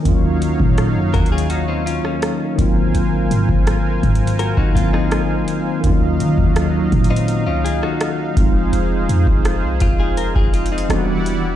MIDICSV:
0, 0, Header, 1, 6, 480
1, 0, Start_track
1, 0, Tempo, 722892
1, 37, Time_signature, 4, 2, 24, 8
1, 7675, End_track
2, 0, Start_track
2, 0, Title_t, "Analog synth pad"
2, 0, Program_c, 0, 89
2, 33, Note_on_c, 0, 63, 79
2, 33, Note_on_c, 0, 73, 73
2, 34, Note_on_c, 0, 77, 89
2, 35, Note_on_c, 0, 54, 74
2, 1698, Note_off_c, 0, 63, 0
2, 1698, Note_off_c, 0, 73, 0
2, 1698, Note_off_c, 0, 77, 0
2, 1699, Note_off_c, 0, 54, 0
2, 1717, Note_on_c, 0, 80, 84
2, 1718, Note_on_c, 0, 70, 73
2, 1719, Note_on_c, 0, 72, 73
2, 1719, Note_on_c, 0, 77, 81
2, 3855, Note_off_c, 0, 80, 0
2, 3856, Note_off_c, 0, 70, 0
2, 3856, Note_off_c, 0, 72, 0
2, 3856, Note_off_c, 0, 77, 0
2, 3876, Note_on_c, 0, 77, 88
2, 3877, Note_on_c, 0, 54, 76
2, 3877, Note_on_c, 0, 63, 77
2, 3878, Note_on_c, 0, 75, 77
2, 5540, Note_off_c, 0, 54, 0
2, 5540, Note_off_c, 0, 75, 0
2, 5557, Note_on_c, 0, 68, 72
2, 5557, Note_on_c, 0, 72, 73
2, 7210, Note_off_c, 0, 63, 0
2, 7210, Note_off_c, 0, 77, 0
2, 7220, Note_off_c, 0, 68, 0
2, 7220, Note_off_c, 0, 72, 0
2, 7238, Note_on_c, 0, 74, 64
2, 7239, Note_on_c, 0, 55, 62
2, 7239, Note_on_c, 0, 64, 71
2, 7239, Note_on_c, 0, 78, 83
2, 7675, Note_off_c, 0, 55, 0
2, 7675, Note_off_c, 0, 64, 0
2, 7675, Note_off_c, 0, 74, 0
2, 7675, Note_off_c, 0, 78, 0
2, 7675, End_track
3, 0, Start_track
3, 0, Title_t, "Clean electric guitar"
3, 0, Program_c, 1, 27
3, 756, Note_on_c, 1, 70, 68
3, 760, Note_on_c, 1, 66, 58
3, 870, Note_off_c, 1, 70, 0
3, 872, Note_off_c, 1, 66, 0
3, 877, Note_on_c, 1, 68, 79
3, 881, Note_on_c, 1, 65, 61
3, 991, Note_off_c, 1, 68, 0
3, 993, Note_off_c, 1, 65, 0
3, 996, Note_on_c, 1, 66, 82
3, 1001, Note_on_c, 1, 63, 64
3, 1109, Note_off_c, 1, 63, 0
3, 1110, Note_off_c, 1, 66, 0
3, 1117, Note_on_c, 1, 63, 81
3, 1121, Note_on_c, 1, 60, 66
3, 1231, Note_off_c, 1, 63, 0
3, 1233, Note_off_c, 1, 60, 0
3, 1237, Note_on_c, 1, 65, 76
3, 1241, Note_on_c, 1, 61, 65
3, 1350, Note_off_c, 1, 61, 0
3, 1351, Note_off_c, 1, 65, 0
3, 1358, Note_on_c, 1, 61, 69
3, 1361, Note_on_c, 1, 58, 57
3, 1699, Note_off_c, 1, 61, 0
3, 1701, Note_off_c, 1, 58, 0
3, 2917, Note_on_c, 1, 70, 71
3, 2921, Note_on_c, 1, 66, 61
3, 3029, Note_off_c, 1, 66, 0
3, 3031, Note_off_c, 1, 70, 0
3, 3036, Note_on_c, 1, 66, 83
3, 3041, Note_on_c, 1, 63, 68
3, 3150, Note_off_c, 1, 66, 0
3, 3153, Note_off_c, 1, 63, 0
3, 3156, Note_on_c, 1, 65, 80
3, 3270, Note_off_c, 1, 65, 0
3, 3276, Note_on_c, 1, 63, 75
3, 3280, Note_on_c, 1, 60, 64
3, 3850, Note_off_c, 1, 63, 0
3, 3852, Note_off_c, 1, 60, 0
3, 4717, Note_on_c, 1, 63, 71
3, 4721, Note_on_c, 1, 60, 61
3, 4945, Note_off_c, 1, 63, 0
3, 4947, Note_off_c, 1, 60, 0
3, 4956, Note_on_c, 1, 65, 79
3, 4961, Note_on_c, 1, 61, 65
3, 5071, Note_off_c, 1, 65, 0
3, 5073, Note_off_c, 1, 61, 0
3, 5076, Note_on_c, 1, 68, 79
3, 5080, Note_on_c, 1, 65, 70
3, 5190, Note_off_c, 1, 68, 0
3, 5192, Note_off_c, 1, 65, 0
3, 5196, Note_on_c, 1, 66, 75
3, 5200, Note_on_c, 1, 63, 63
3, 5538, Note_off_c, 1, 66, 0
3, 5540, Note_off_c, 1, 63, 0
3, 6518, Note_on_c, 1, 65, 69
3, 6631, Note_off_c, 1, 65, 0
3, 6637, Note_on_c, 1, 68, 75
3, 6641, Note_on_c, 1, 65, 65
3, 6751, Note_off_c, 1, 68, 0
3, 6753, Note_off_c, 1, 65, 0
3, 6756, Note_on_c, 1, 70, 82
3, 6870, Note_off_c, 1, 70, 0
3, 6877, Note_on_c, 1, 68, 78
3, 6881, Note_on_c, 1, 65, 70
3, 6989, Note_off_c, 1, 65, 0
3, 6991, Note_off_c, 1, 68, 0
3, 6997, Note_on_c, 1, 65, 77
3, 7111, Note_off_c, 1, 65, 0
3, 7117, Note_on_c, 1, 63, 66
3, 7121, Note_on_c, 1, 60, 62
3, 7345, Note_off_c, 1, 63, 0
3, 7347, Note_off_c, 1, 60, 0
3, 7675, End_track
4, 0, Start_track
4, 0, Title_t, "Tine electric piano"
4, 0, Program_c, 2, 4
4, 0, Control_c, 2, 64, 127
4, 18, Note_on_c, 2, 51, 74
4, 27, Note_on_c, 2, 53, 56
4, 37, Note_on_c, 2, 58, 65
4, 45, Control_c, 2, 64, 0
4, 47, Note_on_c, 2, 61, 67
4, 56, Note_on_c, 2, 65, 82
4, 71, Note_on_c, 2, 54, 69
4, 75, Note_off_c, 2, 53, 0
4, 158, Control_c, 2, 64, 127
4, 1680, Note_off_c, 2, 51, 0
4, 1690, Note_off_c, 2, 58, 0
4, 1695, Note_off_c, 2, 61, 0
4, 1697, Note_on_c, 2, 51, 80
4, 1699, Note_off_c, 2, 54, 0
4, 1700, Note_off_c, 2, 65, 0
4, 1707, Note_on_c, 2, 54, 68
4, 1717, Note_on_c, 2, 58, 68
4, 1726, Control_c, 2, 64, 0
4, 1726, Note_on_c, 2, 60, 72
4, 1736, Note_on_c, 2, 65, 82
4, 1846, Control_c, 2, 64, 127
4, 3120, Note_off_c, 2, 51, 0
4, 3125, Note_off_c, 2, 54, 0
4, 3130, Note_off_c, 2, 58, 0
4, 3135, Note_off_c, 2, 60, 0
4, 3140, Note_off_c, 2, 65, 0
4, 3147, Note_on_c, 2, 51, 59
4, 3151, Note_on_c, 2, 54, 55
4, 3156, Note_on_c, 2, 58, 57
4, 3162, Note_on_c, 2, 60, 55
4, 3166, Note_on_c, 2, 64, 50
4, 3204, Note_off_c, 2, 64, 0
4, 3209, Note_on_c, 2, 65, 64
4, 3850, Note_off_c, 2, 51, 0
4, 3858, Note_on_c, 2, 51, 79
4, 3868, Note_on_c, 2, 53, 56
4, 3869, Note_off_c, 2, 58, 0
4, 3874, Note_off_c, 2, 54, 0
4, 3877, Note_on_c, 2, 58, 71
4, 3879, Note_off_c, 2, 60, 0
4, 3885, Control_c, 2, 64, 0
4, 3887, Note_on_c, 2, 61, 71
4, 3888, Note_off_c, 2, 65, 0
4, 3896, Note_on_c, 2, 65, 86
4, 3911, Note_on_c, 2, 54, 75
4, 3915, Note_off_c, 2, 53, 0
4, 4004, Control_c, 2, 64, 127
4, 5520, Note_off_c, 2, 51, 0
4, 5530, Note_off_c, 2, 58, 0
4, 5535, Note_off_c, 2, 61, 0
4, 5538, Note_on_c, 2, 53, 74
4, 5540, Note_off_c, 2, 65, 0
4, 5547, Note_off_c, 2, 54, 0
4, 5548, Note_on_c, 2, 56, 73
4, 5557, Note_on_c, 2, 60, 70
4, 5566, Control_c, 2, 64, 0
4, 5567, Note_on_c, 2, 63, 72
4, 5577, Note_on_c, 2, 65, 81
4, 5666, Control_c, 2, 64, 127
4, 7201, Note_off_c, 2, 53, 0
4, 7206, Note_off_c, 2, 56, 0
4, 7210, Note_off_c, 2, 60, 0
4, 7215, Note_off_c, 2, 63, 0
4, 7220, Note_off_c, 2, 65, 0
4, 7228, Note_on_c, 2, 52, 75
4, 7232, Note_on_c, 2, 55, 67
4, 7238, Note_on_c, 2, 59, 65
4, 7242, Note_on_c, 2, 62, 65
4, 7245, Control_c, 2, 64, 0
4, 7247, Note_on_c, 2, 66, 85
4, 7374, Control_c, 2, 64, 127
4, 7675, Note_off_c, 2, 52, 0
4, 7675, Note_off_c, 2, 55, 0
4, 7675, Note_off_c, 2, 59, 0
4, 7675, Note_off_c, 2, 62, 0
4, 7675, Note_off_c, 2, 66, 0
4, 7675, End_track
5, 0, Start_track
5, 0, Title_t, "808-style bass"
5, 0, Program_c, 3, 38
5, 36, Note_on_c, 3, 39, 104
5, 382, Note_off_c, 3, 39, 0
5, 397, Note_on_c, 3, 46, 100
5, 637, Note_on_c, 3, 42, 96
5, 647, Note_off_c, 3, 46, 0
5, 751, Note_off_c, 3, 42, 0
5, 756, Note_on_c, 3, 39, 98
5, 1332, Note_off_c, 3, 39, 0
5, 1717, Note_on_c, 3, 32, 98
5, 1947, Note_off_c, 3, 32, 0
5, 1958, Note_on_c, 3, 32, 104
5, 2187, Note_off_c, 3, 32, 0
5, 2197, Note_on_c, 3, 44, 102
5, 2312, Note_off_c, 3, 44, 0
5, 2317, Note_on_c, 3, 32, 95
5, 2662, Note_off_c, 3, 32, 0
5, 2677, Note_on_c, 3, 44, 98
5, 3022, Note_off_c, 3, 44, 0
5, 3037, Note_on_c, 3, 32, 92
5, 3152, Note_off_c, 3, 32, 0
5, 3157, Note_on_c, 3, 32, 98
5, 3617, Note_off_c, 3, 32, 0
5, 3876, Note_on_c, 3, 39, 98
5, 4116, Note_on_c, 3, 51, 94
5, 4126, Note_off_c, 3, 39, 0
5, 4230, Note_off_c, 3, 51, 0
5, 4237, Note_on_c, 3, 39, 93
5, 4582, Note_off_c, 3, 39, 0
5, 4596, Note_on_c, 3, 46, 103
5, 4956, Note_on_c, 3, 37, 93
5, 4966, Note_off_c, 3, 46, 0
5, 5184, Note_off_c, 3, 37, 0
5, 5557, Note_on_c, 3, 29, 105
5, 5787, Note_off_c, 3, 29, 0
5, 5795, Note_on_c, 3, 29, 103
5, 6026, Note_off_c, 3, 29, 0
5, 6036, Note_on_c, 3, 41, 104
5, 6151, Note_off_c, 3, 41, 0
5, 6157, Note_on_c, 3, 29, 91
5, 6396, Note_on_c, 3, 36, 104
5, 6406, Note_off_c, 3, 29, 0
5, 6510, Note_off_c, 3, 36, 0
5, 6516, Note_on_c, 3, 29, 105
5, 6862, Note_off_c, 3, 29, 0
5, 6877, Note_on_c, 3, 29, 94
5, 7222, Note_off_c, 3, 29, 0
5, 7236, Note_on_c, 3, 28, 109
5, 7675, Note_off_c, 3, 28, 0
5, 7675, End_track
6, 0, Start_track
6, 0, Title_t, "Drums"
6, 36, Note_on_c, 9, 36, 100
6, 36, Note_on_c, 9, 42, 69
6, 102, Note_off_c, 9, 36, 0
6, 102, Note_off_c, 9, 42, 0
6, 278, Note_on_c, 9, 42, 70
6, 344, Note_off_c, 9, 42, 0
6, 396, Note_on_c, 9, 36, 86
6, 463, Note_off_c, 9, 36, 0
6, 516, Note_on_c, 9, 42, 60
6, 518, Note_on_c, 9, 37, 100
6, 582, Note_off_c, 9, 42, 0
6, 585, Note_off_c, 9, 37, 0
6, 756, Note_on_c, 9, 36, 80
6, 757, Note_on_c, 9, 42, 39
6, 823, Note_off_c, 9, 36, 0
6, 823, Note_off_c, 9, 42, 0
6, 837, Note_on_c, 9, 42, 52
6, 903, Note_off_c, 9, 42, 0
6, 917, Note_on_c, 9, 42, 71
6, 983, Note_off_c, 9, 42, 0
6, 995, Note_on_c, 9, 42, 65
6, 1061, Note_off_c, 9, 42, 0
6, 1242, Note_on_c, 9, 42, 75
6, 1309, Note_off_c, 9, 42, 0
6, 1359, Note_on_c, 9, 37, 71
6, 1426, Note_off_c, 9, 37, 0
6, 1476, Note_on_c, 9, 42, 59
6, 1479, Note_on_c, 9, 37, 113
6, 1542, Note_off_c, 9, 42, 0
6, 1545, Note_off_c, 9, 37, 0
6, 1717, Note_on_c, 9, 36, 100
6, 1717, Note_on_c, 9, 42, 69
6, 1783, Note_off_c, 9, 36, 0
6, 1784, Note_off_c, 9, 42, 0
6, 1956, Note_on_c, 9, 42, 66
6, 2023, Note_off_c, 9, 42, 0
6, 2199, Note_on_c, 9, 42, 72
6, 2265, Note_off_c, 9, 42, 0
6, 2317, Note_on_c, 9, 36, 82
6, 2383, Note_off_c, 9, 36, 0
6, 2436, Note_on_c, 9, 42, 63
6, 2439, Note_on_c, 9, 37, 103
6, 2503, Note_off_c, 9, 42, 0
6, 2505, Note_off_c, 9, 37, 0
6, 2677, Note_on_c, 9, 36, 83
6, 2678, Note_on_c, 9, 42, 42
6, 2743, Note_off_c, 9, 36, 0
6, 2744, Note_off_c, 9, 42, 0
6, 2758, Note_on_c, 9, 42, 55
6, 2824, Note_off_c, 9, 42, 0
6, 2838, Note_on_c, 9, 42, 71
6, 2904, Note_off_c, 9, 42, 0
6, 2916, Note_on_c, 9, 42, 61
6, 2983, Note_off_c, 9, 42, 0
6, 3037, Note_on_c, 9, 36, 87
6, 3103, Note_off_c, 9, 36, 0
6, 3157, Note_on_c, 9, 36, 85
6, 3163, Note_on_c, 9, 42, 76
6, 3223, Note_off_c, 9, 36, 0
6, 3230, Note_off_c, 9, 42, 0
6, 3280, Note_on_c, 9, 37, 68
6, 3346, Note_off_c, 9, 37, 0
6, 3396, Note_on_c, 9, 42, 58
6, 3399, Note_on_c, 9, 37, 115
6, 3463, Note_off_c, 9, 42, 0
6, 3465, Note_off_c, 9, 37, 0
6, 3637, Note_on_c, 9, 42, 67
6, 3703, Note_off_c, 9, 42, 0
6, 3877, Note_on_c, 9, 36, 100
6, 3877, Note_on_c, 9, 42, 72
6, 3943, Note_off_c, 9, 36, 0
6, 3943, Note_off_c, 9, 42, 0
6, 4119, Note_on_c, 9, 42, 71
6, 4185, Note_off_c, 9, 42, 0
6, 4236, Note_on_c, 9, 36, 83
6, 4303, Note_off_c, 9, 36, 0
6, 4356, Note_on_c, 9, 42, 61
6, 4358, Note_on_c, 9, 37, 108
6, 4422, Note_off_c, 9, 42, 0
6, 4424, Note_off_c, 9, 37, 0
6, 4596, Note_on_c, 9, 36, 83
6, 4596, Note_on_c, 9, 42, 40
6, 4663, Note_off_c, 9, 36, 0
6, 4663, Note_off_c, 9, 42, 0
6, 4677, Note_on_c, 9, 42, 54
6, 4743, Note_off_c, 9, 42, 0
6, 4757, Note_on_c, 9, 42, 70
6, 4823, Note_off_c, 9, 42, 0
6, 4835, Note_on_c, 9, 42, 60
6, 4902, Note_off_c, 9, 42, 0
6, 5084, Note_on_c, 9, 42, 75
6, 5150, Note_off_c, 9, 42, 0
6, 5200, Note_on_c, 9, 37, 73
6, 5266, Note_off_c, 9, 37, 0
6, 5316, Note_on_c, 9, 42, 61
6, 5319, Note_on_c, 9, 37, 115
6, 5382, Note_off_c, 9, 42, 0
6, 5385, Note_off_c, 9, 37, 0
6, 5557, Note_on_c, 9, 36, 109
6, 5557, Note_on_c, 9, 42, 70
6, 5623, Note_off_c, 9, 36, 0
6, 5623, Note_off_c, 9, 42, 0
6, 5796, Note_on_c, 9, 42, 72
6, 5863, Note_off_c, 9, 42, 0
6, 6038, Note_on_c, 9, 42, 73
6, 6104, Note_off_c, 9, 42, 0
6, 6157, Note_on_c, 9, 36, 88
6, 6223, Note_off_c, 9, 36, 0
6, 6275, Note_on_c, 9, 42, 63
6, 6277, Note_on_c, 9, 37, 108
6, 6341, Note_off_c, 9, 42, 0
6, 6344, Note_off_c, 9, 37, 0
6, 6510, Note_on_c, 9, 42, 62
6, 6516, Note_on_c, 9, 36, 85
6, 6576, Note_off_c, 9, 42, 0
6, 6583, Note_off_c, 9, 36, 0
6, 6755, Note_on_c, 9, 42, 66
6, 6822, Note_off_c, 9, 42, 0
6, 6877, Note_on_c, 9, 36, 90
6, 6943, Note_off_c, 9, 36, 0
6, 6996, Note_on_c, 9, 42, 65
6, 7063, Note_off_c, 9, 42, 0
6, 7076, Note_on_c, 9, 42, 64
6, 7142, Note_off_c, 9, 42, 0
6, 7157, Note_on_c, 9, 42, 67
6, 7224, Note_off_c, 9, 42, 0
6, 7237, Note_on_c, 9, 42, 62
6, 7240, Note_on_c, 9, 37, 114
6, 7303, Note_off_c, 9, 42, 0
6, 7306, Note_off_c, 9, 37, 0
6, 7477, Note_on_c, 9, 42, 70
6, 7544, Note_off_c, 9, 42, 0
6, 7675, End_track
0, 0, End_of_file